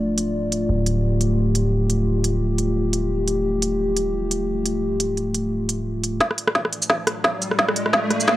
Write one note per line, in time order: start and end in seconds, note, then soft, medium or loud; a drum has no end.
0.00 0.68 D1 medium
0.00 6.17 A3 medium
0.00 6.17 F4 medium
0.00 0.67 D5 medium
0.18 closed hi-hat medium
0.52 closed hi-hat medium
0.69 6.20 D1 medium
0.69 6.19 G4 medium
0.86 closed hi-hat medium
1.21 closed hi-hat medium
1.55 closed hi-hat medium
1.90 closed hi-hat medium
2.24 closed hi-hat medium
2.58 closed hi-hat medium
2.93 closed hi-hat medium
3.28 closed hi-hat medium
3.62 closed hi-hat medium
3.97 closed hi-hat medium
4.31 closed hi-hat medium
4.66 closed hi-hat medium
5.00 closed hi-hat medium
5.17 closed hi-hat soft
5.34 closed hi-hat medium
5.69 closed hi-hat medium
6.04 closed hi-hat medium
6.20 8.37 A3 medium
6.20 8.37 F4 medium
6.20 8.37 D5 medium
6.20 kick medium
6.20 snare soft
6.20 riser medium
6.31 cross-stick soft
6.38 closed hi-hat medium
6.48 cross-stick medium
6.55 kick medium
6.55 snare soft
6.65 cross-stick medium
6.73 closed hi-hat medium
6.82 shaker medium
6.90 kick medium
6.90 cross-stick medium
6.90 snare soft
7.07 cross-stick medium
7.07 closed hi-hat medium
7.24 kick medium
7.24 cross-stick medium
7.24 snare medium
7.42 closed hi-hat medium
7.42 shaker soft
7.51 cross-stick medium
7.59 kick medium
7.59 snare medium
7.69 cross-stick medium
7.76 closed hi-hat medium
7.86 cross-stick medium
7.93 kick loud
7.93 snare medium
8.11 cross-stick medium
8.11 closed hi-hat medium
8.20 shaker medium
8.28 kick medium
8.28 cross-stick medium
8.28 snare medium